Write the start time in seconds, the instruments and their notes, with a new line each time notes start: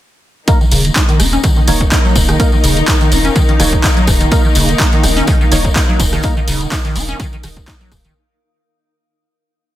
0.47 string section D#3 A#3 D#4, synth stab A#3 D#4 A#4, ambient pad D#4, kick, closed hi-hat, tambourine
0.61 acid bass D#3, tambourine
0.68 ambient pad D#6, tambourine
0.72 sub bass D#1, acid bass C#3, open hi-hat
0.76 ambient pad A#4
0.83 acid bass D#3, ambient pad F5, closed hi-hat, tambourine
0.96 acid bass D#4, kick, clap, closed hi-hat, tambourine
1.08 acid bass D#3, closed hi-hat, tambourine
1.20 sub bass D#1, acid bass D#4, cross-stick, open hi-hat, tambourine
1.33 acid bass C#4, closed hi-hat, tambourine
1.43 acid bass D#3, kick, cross-stick, closed hi-hat, tambourine
1.56 acid bass D#3, tambourine
1.67 sub bass D#1, acid bass D#3, synth stab A#3 D#4 C#5, open hi-hat, tambourine
1.80 kick, closed hi-hat, tambourine
1.91 acid bass D#4, kick, clap, closed hi-hat, tambourine
2.05 acid bass F#3, tambourine
2.16 sub bass D#1, acid bass D#3, kick, open hi-hat, tambourine
2.28 acid bass D#3, cross-stick, closed hi-hat, tambourine
2.40 synth stab A#3 D#4 A#4, kick, closed hi-hat, tambourine
2.52 acid bass D#3, tambourine
2.64 sub bass D#1, acid bass C#3, open hi-hat, tambourine
2.77 acid bass D#3, closed hi-hat, tambourine
2.88 acid bass D#4, kick, clap, closed hi-hat, tambourine
3.01 acid bass D#3, closed hi-hat, tambourine
3.12 sub bass D#1, acid bass D#4, open hi-hat, tambourine
3.25 acid bass C#4, closed hi-hat, tambourine
3.36 acid bass D#3, kick, closed hi-hat, tambourine
3.49 acid bass D#3, closed hi-hat, tambourine
3.59 sub bass D#1, acid bass D#3, synth stab A#3 D#4 C#5, cross-stick, open hi-hat, tambourine
3.73 kick, closed hi-hat
3.84 acid bass D#4, kick, clap, closed hi-hat, tambourine
3.97 acid bass F#3, closed hi-hat, tambourine
4.07 sub bass D#1, acid bass D#3, kick, cross-stick, open hi-hat, tambourine
4.20 acid bass D#3, closed hi-hat, tambourine
4.31 synth stab A#3 D#4 A#4, kick, closed hi-hat, tambourine
4.45 acid bass D#3, tambourine
4.55 sub bass D#1, acid bass C#3, closed hi-hat, open hi-hat, tambourine
4.69 acid bass D#3, closed hi-hat, tambourine
4.79 acid bass D#4, kick, snare, clap, closed hi-hat, tambourine
4.92 acid bass D#3, closed hi-hat, tambourine
5.03 sub bass D#1, acid bass D#4, cross-stick, closed hi-hat, open hi-hat, tambourine
5.17 acid bass C#4, closed hi-hat, tambourine
5.27 acid bass D#3, kick, cross-stick, closed hi-hat, tambourine
5.41 acid bass D#3, tambourine
5.51 sub bass D#1, acid bass D#3, synth stab A#3 D#4 C#5, closed hi-hat, open hi-hat, tambourine
5.65 kick, closed hi-hat, tambourine
5.76 acid bass D#4, kick, snare, clap, closed hi-hat, tambourine
5.89 acid bass F#3, tambourine
6.00 sub bass D#1, acid bass D#3, kick, closed hi-hat, open hi-hat, tambourine
6.13 acid bass D#3, cross-stick, snare, closed hi-hat, tambourine
6.23 synth stab A#3 D#4 A#4, kick, closed hi-hat, tambourine
6.37 acid bass D#3, tambourine
6.48 sub bass D#1, acid bass C#3, closed hi-hat, open hi-hat, tambourine
6.60 acid bass D#3, closed hi-hat, tambourine
6.72 acid bass D#4, kick, snare, clap, closed hi-hat, tambourine
6.85 acid bass D#3, snare, closed hi-hat, tambourine
6.95 sub bass D#1, acid bass D#4, closed hi-hat, open hi-hat, tambourine
7.09 acid bass C#4, closed hi-hat, tambourine
7.20 acid bass D#3, kick, closed hi-hat, tambourine
7.33 acid bass D#3, closed hi-hat, tambourine
7.43 sub bass D#1, acid bass D#3, cross-stick, closed hi-hat, open hi-hat, tambourine
7.57 kick, tambourine
7.67 acid bass D#4, kick, snare, clap, closed hi-hat, tambourine
7.81 acid bass F#3, closed hi-hat, tambourine
7.92 sub bass D#1, acid bass D#3, kick, cross-stick, closed hi-hat, open hi-hat, tambourine
8.05 acid bass D#3, closed hi-hat, tambourine